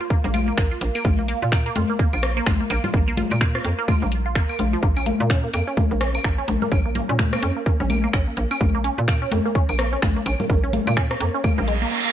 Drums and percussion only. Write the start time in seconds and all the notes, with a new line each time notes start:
0.10 kick
0.24 low conga
0.34 closed hi-hat, high conga, claves
0.58 finger snap, kick
0.81 closed hi-hat
0.95 claves
1.05 kick, high conga
1.28 closed hi-hat
1.52 finger snap, kick, claves
1.76 closed hi-hat, high conga
1.99 kick
2.13 claves
2.23 cross-stick, closed hi-hat
2.46 finger snap, kick, high conga
2.70 closed hi-hat, claves
2.84 low conga
2.94 kick
3.17 closed hi-hat, high conga, low conga
3.31 claves
3.41 finger snap, kick
3.55 cross-stick
3.65 closed hi-hat
3.88 kick, high conga, claves
4.02 low conga
4.12 closed hi-hat
4.35 finger snap, kick
4.49 claves
4.59 closed hi-hat, high conga
4.83 kick
4.97 claves
5.06 closed hi-hat, high conga
5.30 finger snap, kick
5.53 closed hi-hat, claves
5.77 kick, high conga
6.01 cross-stick, closed hi-hat
6.15 claves
6.24 finger snap, kick
6.48 closed hi-hat, high conga
6.62 low conga
6.72 kick, claves
6.95 closed hi-hat, low conga
7.19 finger snap, kick, high conga
7.33 cross-stick, claves
7.43 closed hi-hat
7.66 kick
7.80 low conga
7.90 closed hi-hat, high conga, claves
8.13 finger snap, kick
8.37 closed hi-hat
8.51 claves
8.61 kick, high conga
8.84 closed hi-hat
9.08 finger snap, kick, claves
9.32 closed hi-hat, high conga
9.55 kick
9.69 claves
9.79 cross-stick, closed hi-hat
10.02 finger snap, kick, high conga
10.26 closed hi-hat, claves
10.40 low conga
10.50 kick
10.73 closed hi-hat, high conga, low conga
10.87 claves
10.97 finger snap, kick
11.11 cross-stick
11.20 closed hi-hat
11.44 kick, high conga, claves
11.58 low conga
11.68 closed hi-hat